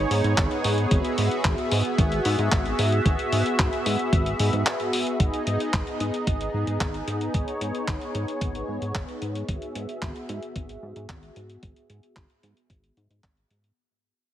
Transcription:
Already playing: B3 D#4 G#4 C#5
0.11 G#2, open hi-hat
0.24 G#2, closed hi-hat
0.38 G#1, kick, clap, closed hi-hat
0.51 closed hi-hat
0.64 G#2, open hi-hat
0.78 closed hi-hat
0.91 G#1 F#4 E5, kick, closed hi-hat
1.05 closed hi-hat
1.18 G#2, open hi-hat
1.31 closed hi-hat
1.45 G#1, kick, clap, closed hi-hat
1.58 closed hi-hat
1.72 G#2, open hi-hat
1.85 closed hi-hat
1.98 G#1, kick, closed hi-hat
2.12 closed hi-hat
2.25 G#2, open hi-hat
2.39 G#2, closed hi-hat
2.52 G#1, kick, clap, closed hi-hat
2.66 closed hi-hat
2.79 G#2, open hi-hat
2.92 closed hi-hat
3.06 G#1, kick, closed hi-hat
3.19 closed hi-hat
3.32 G#2, open hi-hat
3.46 closed hi-hat
3.59 G#1, kick, clap, closed hi-hat
3.73 closed hi-hat
3.86 G#2, open hi-hat
3.99 closed hi-hat
4.13 G#1, kick, closed hi-hat
4.26 closed hi-hat
4.39 G#2, open hi-hat
4.53 G#2, closed hi-hat
4.66 clap, closed hi-hat
4.80 closed hi-hat
4.93 open hi-hat
5.07 closed hi-hat
5.20 G#1 B3 D#4 G#4 D#5, kick, closed hi-hat
5.34 closed hi-hat
5.47 G#2, closed hi-hat
5.60 closed hi-hat
5.74 G#1, kick, clap, closed hi-hat
5.87 closed hi-hat
6.00 G#2, closed hi-hat
6.14 closed hi-hat
6.27 G#1, kick, closed hi-hat
6.41 closed hi-hat
6.54 G#2
6.67 G#2, closed hi-hat
6.81 G#1, kick, clap, closed hi-hat
6.94 closed hi-hat
7.08 G#2, closed hi-hat
7.21 closed hi-hat
7.34 G#1 C#5, kick, closed hi-hat
7.48 closed hi-hat
7.61 G#2, closed hi-hat
7.75 closed hi-hat
7.88 G#1, kick, clap, closed hi-hat
8.01 closed hi-hat
8.15 G#2, closed hi-hat
8.28 closed hi-hat
8.41 G#1, kick, closed hi-hat
8.55 closed hi-hat
8.68 G#2
8.82 G#2, closed hi-hat
8.95 G#1, kick, clap, closed hi-hat
9.08 closed hi-hat
9.22 G#2, closed hi-hat
9.35 closed hi-hat
9.49 G#1 F#4 G#4 E5, kick, closed hi-hat
9.62 closed hi-hat
9.75 G#2, closed hi-hat
9.89 closed hi-hat
10.02 G#1, kick, clap, closed hi-hat
10.16 closed hi-hat
10.29 G#2, closed hi-hat
10.43 closed hi-hat
10.56 G#1, kick, closed hi-hat
10.69 closed hi-hat
10.83 G#2
10.96 G#2, closed hi-hat
11.09 G#1, kick, clap, closed hi-hat
11.23 closed hi-hat
11.36 G#2, closed hi-hat
11.50 closed hi-hat
11.63 G#1, kick, closed hi-hat
11.76 closed hi-hat
11.90 G#2, closed hi-hat
12.03 closed hi-hat
12.16 G#1, kick, clap, closed hi-hat
12.30 closed hi-hat
12.43 G#2, closed hi-hat
12.57 closed hi-hat
12.70 G#1, kick, closed hi-hat
12.84 closed hi-hat
12.97 G#2, closed hi-hat
13.10 G#2, closed hi-hat
13.24 G#1, kick, clap, closed hi-hat
13.37 closed hi-hat
13.50 G#2, closed hi-hat
13.64 closed hi-hat

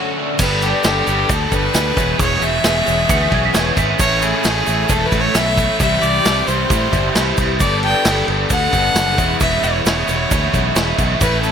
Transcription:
Already playing: D3 A3 C#4 F#4
0.18 A3
0.39 G1 G2 D3 G3 B3 D4 G4 A4 B4 G5 B5, kick, crash, shaker
0.62 G3 B3 D4 G4, crash, shaker
0.84 G1 G2 D3 G3 B3 D4 G4 A4, snare, crash, shaker
1.06 G1 G3 B3 D4 G4 A4, crash, shaker
1.28 D2 G3 B3 D4 G4 A4, kick, crash, shaker
1.51 G1 G2 D3 G3 B3 D4 G4 A4 B4, kick, crash, shaker
1.74 D2 G3 B3 D4 G4 A4, snare, crash, shaker
1.96 E1 E2 B2 E3 G#3 B3 C#4 G#4 E5 C#6, kick, crash, shaker
2.18 E1 E2 B2 E3 G#3 B3 G#4 C#5, kick, crash, shaker
2.41 E1 E3 G#3 B3 G#4 E5, crash, shaker
2.63 E1 E2 B2 E3 G#3 B3 C#4 G#4, snare, crash, shaker
2.86 E1 E3 G#3 B3 C#4 G#4, crash, shaker
3.08 D2 E3 G#3 B3 C#4 G#4 F#5, kick, crash, shaker
3.23 E5
3.30 B1 E2 B2 E3 G#3 B3 C#4 G#4 C#5, kick, crash
3.45 E5
3.54 E1 E3 G#3 B3 C#4 G#4 C#5, snare, crash, shaker
3.76 G#1 E3 G#3 B3 G#4 E5, kick, crash, shaker
3.98 A1 A2 E3 A3 C#4 E4 A4 C#5, kick, crash, shaker
4.20 A3 C#4 E4 G#4, crash, shaker
4.43 A1 A2 E3 A3 C#4 E4 A4, snare, crash, shaker
4.65 A1 C#4 E4 A4, crash, shaker
4.69 A3
4.88 E1 E3 A3 C#4 E4 A4, kick, crash, shaker
5.06 B4
5.11 A1 A2 E3 A3 C#4 E4 A4, kick, crash, shaker
5.21 C#5
5.33 B1 E3 A3 C#4 E4 A4 E5, snare, crash, shaker
5.57 A3 C#4 E4, kick, crash, shaker
5.79 C2 C3 E3 G3 C4 E4 G4 E5 C6, kick, crash, shaker
6.02 C2 G3 C4 E4 D5, crash, shaker
6.24 C2 C3 E3 G3 C4 E4 G4, snare, crash, shaker
6.46 C2 C4 E4 G4 C5, crash, shaker
6.50 G3
6.70 A2 E3 G3 C4 E4 G4, kick, crash, shaker
6.91 G1 G3 C4 E4 G4, kick, crash, shaker
6.95 C3 E3
7.15 C2 E3 G3 C4 E4 G4, snare, crash, shaker
7.37 C2 G3 C4 E4, kick, crash, shaker
7.60 G1 G2 D3 G3 B3 D4 G4 A4 D5 B5, kick, crash, shaker
7.64 G4
7.83 G3 B3 D4 G4 G5, crash
8.05 G1 G2 D3 G3 B3 D4 G4 A4, snare, crash, shaker
8.27 G1 G3 B3 D4 G4 A4, crash
8.50 D2 G3 B3 D4 G4 A4 F#5, kick, crash, shaker
8.71 G1 G3 B3 D4 G4 A4, kick, crash, shaker
8.75 G2 D3
8.95 F#1 G3 B3 D4 G4 A4, snare, crash, shaker
9.17 E1 E2 B2 E3 G#3 B3 C#4 E4 G#4 E5 C#6, kick, crash, shaker
9.39 E1 E2 B2 E3 G#3 B3 E4 E5, kick, crash, shaker
9.62 E1 E3 G#3 B3 E4 C#5, crash, shaker
9.84 E1 E2 B2 E3 G#3 B3 C#4 E4 C#5, snare, crash, shaker
10.07 E1 E3 G#3 B3 C#4 E4, crash, shaker
10.30 D2 E3 G#3 B3 C#4 E4, kick, crash, shaker
10.53 B1 E2 B2 E3 G#3 B3 C#4 E4, kick, crash, shaker
10.75 E1 E3 G#3 B3 C#4 E4, snare, crash, shaker
10.97 B1 E3 G#3 B3 E4, kick, crash, shaker
11.20 A1 A2 E3 A3 C#4 E4 A4 B4, kick, crash, shaker
11.43 A3 C#4 E4 A4, crash, shaker

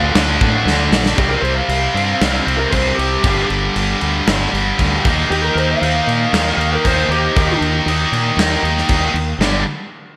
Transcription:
Already playing: D2 D3 A3 D4 F5
0.15 D2, snare, crash
0.41 A2, kick
0.65 D2, snare
0.91 A#1, snare
1.06 snare
1.16 C2 C3 G3 C4 G4, kick, crash
1.29 A#4
1.41 C2 C5, crash
1.55 F5
1.68 C2, crash
1.94 G2 C3 G3 C4, crash
2.21 C2, snare, crash
2.46 C2 C3 G3 C4, crash
2.57 A#4
2.70 C2 C3 G3 C5, kick, crash
2.75 C4
2.95 C2 G4
2.99 crash
3.23 G1 G2 D3 G3, kick, crash
3.50 G1, crash
3.75 G1, crash
4.01 D2 D3 G3, crash
4.05 G2
4.27 G1, snare, crash
4.51 G1 G2 D3 G3, crash
4.76 D2 G2 D3 G3, kick, crash
5.04 D#2 D#3 A#3 D#4, kick, crash
5.30 D#2 G4, crash
5.42 A#4
5.55 D#2 C5, crash
5.71 F5
5.81 D#2 D#3 A#3 D#4, crash
6.07 A#2, crash
6.32 D#2 D#3 A#3 D#4, snare, crash
6.57 D#2 A#3 D#4, crash
6.61 D#3
6.73 A#4
6.85 D#2 C5, kick, crash
7.08 D#2 D#3 A#3 D#4 G4, crash
7.36 D#2, kick, crash
7.61 D#2, crash
7.86 D#2 D#3 A#3 D#4, crash
8.12 A#2, crash
8.37 D#2 D#3 A#3 D#4, snare, crash
8.63 D#2 D#3 A#3 D#4, crash
8.78 snare
8.89 D#2, kick, crash
9.14 D#2, crash
9.38 G1 G2, snare
9.42 D3 G3

